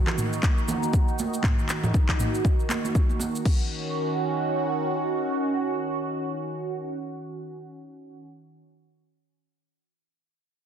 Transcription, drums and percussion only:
0.07 clap, low conga, shaker
0.17 mid tom, high conga, shaker
0.33 shaker
0.43 kick, clap, high conga, shaker
0.58 shaker
0.68 high conga, low conga, shaker
0.82 high conga, shaker
0.93 kick, shaker
1.08 shaker
1.19 high conga, shaker
1.34 shaker
1.43 kick, clap, mid tom, high conga, shaker
1.59 shaker
1.69 clap, shaker
1.83 mid tom, low conga, shaker
1.94 kick, shaker
2.09 kick, clap, low conga, shaker
2.19 mid tom, high conga, shaker
2.34 shaker
2.45 kick, shaker
2.60 shaker
2.69 clap, high conga, shaker
2.85 high conga, shaker
2.95 kick, shaker
3.09 high conga, shaker
3.20 high conga, shaker
3.35 shaker
3.45 kick, crash

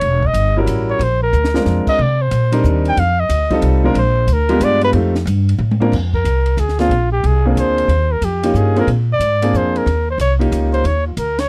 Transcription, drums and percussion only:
0.01 ride
0.23 kick
0.34 hi-hat pedal, ride
0.67 hi-hat pedal, ride
1.01 ride
1.33 hi-hat pedal
1.44 snare
1.55 snare
1.65 snare, hi-hat pedal
1.87 kick, crash
2.31 hi-hat pedal, ride
2.52 ride
2.64 hi-hat pedal
2.85 ride
2.97 ride
3.30 hi-hat pedal, ride
3.51 kick, ride
3.62 ride
3.95 ride
4.28 hi-hat pedal, ride
4.49 ride
4.61 hi-hat pedal, ride
4.81 ride
4.93 ride
5.15 snare
5.27 hi-hat pedal, ride
5.49 ride
5.71 mid tom
5.82 mid tom
5.92 kick, crash
6.13 kick
6.25 hi-hat pedal, ride
6.46 ride
6.58 hi-hat pedal, ride
6.69 snare
6.79 snare, ride
6.91 ride
7.24 ride
7.57 hi-hat pedal, ride
7.78 ride
7.89 ride
8.22 hi-hat pedal, ride
8.43 ride
8.55 hi-hat pedal
8.76 ride
8.88 ride
9.21 hi-hat pedal, ride
9.42 ride
9.54 hi-hat pedal
9.76 ride
9.87 ride
10.19 hi-hat pedal, ride
10.41 ride
10.52 hi-hat pedal, ride
10.74 ride
10.85 ride
11.17 hi-hat pedal, ride
11.39 snare, ride

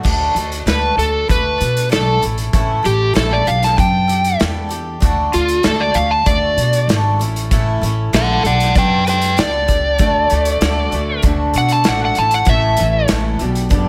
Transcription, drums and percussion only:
0.05 kick, crash
0.36 closed hi-hat
0.52 closed hi-hat
0.67 snare, closed hi-hat
0.99 closed hi-hat
1.29 kick, closed hi-hat
1.61 closed hi-hat
1.77 closed hi-hat
1.92 snare, closed hi-hat
2.23 closed hi-hat
2.38 closed hi-hat
2.53 kick, closed hi-hat
2.85 closed hi-hat
3.15 snare, closed hi-hat
3.47 closed hi-hat
3.63 snare, closed hi-hat
3.78 kick, closed hi-hat
4.09 closed hi-hat
4.24 closed hi-hat
4.40 snare, closed hi-hat
4.70 closed hi-hat
5.02 kick, closed hi-hat
5.33 closed hi-hat
5.48 closed hi-hat
5.63 snare, closed hi-hat
5.94 closed hi-hat
6.26 kick, closed hi-hat
6.58 closed hi-hat
6.73 closed hi-hat
6.89 snare, closed hi-hat
7.21 closed hi-hat
7.36 closed hi-hat
7.51 kick, closed hi-hat
7.83 closed hi-hat
8.13 snare, closed hi-hat
8.45 closed hi-hat
8.60 snare, closed hi-hat
8.75 kick, closed hi-hat
9.07 closed hi-hat
9.21 closed hi-hat
9.38 snare, closed hi-hat
9.68 kick, closed hi-hat
9.98 kick, closed hi-hat
10.30 closed hi-hat
10.45 closed hi-hat
10.61 snare, closed hi-hat
10.92 closed hi-hat
11.22 kick, closed hi-hat
11.54 closed hi-hat
11.69 closed hi-hat
11.84 snare, closed hi-hat
12.15 closed hi-hat
12.31 closed hi-hat
12.45 kick, closed hi-hat
12.77 closed hi-hat
13.08 snare, closed hi-hat
13.39 closed hi-hat
13.55 closed hi-hat
13.70 kick, closed hi-hat

